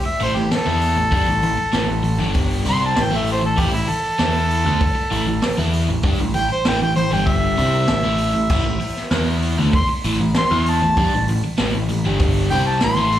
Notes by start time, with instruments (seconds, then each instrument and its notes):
0.05 harmonica E5, muted overdriven electric guitar stroke, muted picked electric bass stroke
0.20 picked electric bass A1, overdriven electric guitar A2 E3, harmonica C5, open hi-hat
0.36 picked electric bass A1, overdriven electric guitar A2 E3, harmonica G4, snare
0.51 harmonica A4, muted picked electric bass stroke, muted overdriven electric guitar stroke, snare, open hi-hat
0.66 picked electric bass E2, overdriven electric guitar E3 B3 E4
0.81 open hi-hat
0.96 picked electric bass A1, overdriven electric guitar A2 E3
1.11 picked electric bass G2, overdriven electric guitar G3 D4, kick, open hi-hat
1.27 picked electric bass A1, overdriven electric guitar A2 E3
1.42 picked electric bass A1, overdriven electric guitar A2 E3, open hi-hat
1.58 muted overdriven electric guitar stroke, muted picked electric bass stroke
1.72 picked electric bass A1, overdriven electric guitar A2 E3, snare, open hi-hat
1.88 picked electric bass A1, overdriven electric guitar A2 E3
2.03 picked electric bass A1, overdriven electric guitar A2 E3, open hi-hat
2.19 picked electric bass G1, overdriven electric guitar G2 D3 G3
2.34 kick, open hi-hat
2.65 picked electric bass C2, overdriven electric guitar C3 G3 C4, open hi-hat
2.69 harmonica C6
2.85 harmonica A5
2.96 picked electric bass A1, overdriven electric guitar A2 E3, snare, open hi-hat
3.02 harmonica G5
3.11 picked electric bass A1, overdriven electric guitar A2 E3 A3
3.17 harmonica E5
3.27 open hi-hat
3.32 harmonica C5
3.42 picked electric bass A1, overdriven electric guitar A2 E3, harmonica A4
3.57 picked electric bass A1, overdriven electric guitar A2 E3, harmonica G4, kick, open hi-hat
3.72 picked electric bass A1, overdriven electric guitar A2 E3, harmonica E4
3.88 harmonica A4, muted overdriven electric guitar stroke, muted picked electric bass stroke, open hi-hat
4.18 picked electric bass E2, overdriven electric guitar E3 B3 E4, snare, open hi-hat
4.50 open hi-hat
4.65 picked electric bass D2, overdriven electric guitar D3 A3
4.80 muted overdriven electric guitar stroke, muted picked electric bass stroke, kick, open hi-hat
4.95 muted overdriven electric guitar stroke, muted picked electric bass stroke
5.11 picked electric bass A1, overdriven electric guitar A2 E3, open hi-hat
5.27 picked electric bass A1, overdriven electric guitar A2 E3
5.42 muted picked electric bass stroke, muted overdriven electric guitar stroke, snare, open hi-hat
5.58 picked electric bass E2, overdriven electric guitar E3 B3 E4
5.73 open hi-hat
5.89 picked electric bass A1, overdriven electric guitar A2 E3
6.03 picked electric bass G2, overdriven electric guitar G3 D4, kick, open hi-hat
6.20 picked electric bass A1, overdriven electric guitar A2 E3
6.34 picked electric bass A1, overdriven electric guitar A2 E3, harmonica G5, open hi-hat
6.49 harmonica C5, muted overdriven electric guitar stroke, muted picked electric bass stroke
6.65 picked electric bass A1, overdriven electric guitar A2 E3, harmonica G5, snare, open hi-hat
6.81 picked electric bass A1, overdriven electric guitar A2 E3, harmonica G5
6.96 picked electric bass A1, overdriven electric guitar A2 E3, harmonica C5, open hi-hat
7.11 picked electric bass G1, overdriven electric guitar G2 D3 G3, harmonica G5
7.26 harmonica E5, kick, open hi-hat
7.57 picked electric bass C2, overdriven electric guitar C3 G3 C4, open hi-hat
7.88 picked electric bass A1, overdriven electric guitar A2 E3, snare, open hi-hat
8.03 picked electric bass A1, overdriven electric guitar A2 E3 A3
8.18 open hi-hat
8.34 picked electric bass A1, overdriven electric guitar A2 E3
8.50 picked electric bass A1, overdriven electric guitar A2 E3, kick, crash
8.65 picked electric bass A1, overdriven electric guitar A2 E3
8.80 muted picked electric bass stroke, muted overdriven electric guitar stroke, open hi-hat
8.96 snare
9.11 picked electric bass E2, overdriven electric guitar E3 B3 E4, snare, open hi-hat
9.42 open hi-hat
9.58 picked electric bass D2, overdriven electric guitar D3 A3
9.73 harmonica C6, muted picked electric bass stroke, muted overdriven electric guitar stroke, kick, open hi-hat
9.89 muted picked electric bass stroke, muted overdriven electric guitar stroke
10.04 picked electric bass A1, overdriven electric guitar A2 E3, open hi-hat
10.20 picked electric bass A1, overdriven electric guitar A2 E3
10.35 harmonica C6, muted overdriven electric guitar stroke, muted picked electric bass stroke, snare, open hi-hat
10.51 picked electric bass E2, overdriven electric guitar E3 B3 E4
10.66 harmonica A5, open hi-hat
10.82 picked electric bass A1, overdriven electric guitar A2 E3
10.97 picked electric bass G2, overdriven electric guitar G3 D4, kick, open hi-hat
11.14 picked electric bass A1, overdriven electric guitar A2 E3
11.28 picked electric bass A1, overdriven electric guitar A2 E3, open hi-hat
11.44 muted picked electric bass stroke, muted overdriven electric guitar stroke
11.58 picked electric bass A1, overdriven electric guitar A2 E3, snare, open hi-hat
11.74 picked electric bass A1, overdriven electric guitar A2 E3
11.89 picked electric bass A1, overdriven electric guitar A2 E3, open hi-hat
12.05 picked electric bass G1, overdriven electric guitar G2 D3 G3
12.19 kick, open hi-hat
12.50 picked electric bass C2, overdriven electric guitar C3 G3 C4, harmonica G5, open hi-hat
12.67 harmonica A5
12.81 picked electric bass A1, overdriven electric guitar A2 E3, harmonica C6, snare, open hi-hat
12.96 picked electric bass A1, overdriven electric guitar A2 E3 A3
13.12 open hi-hat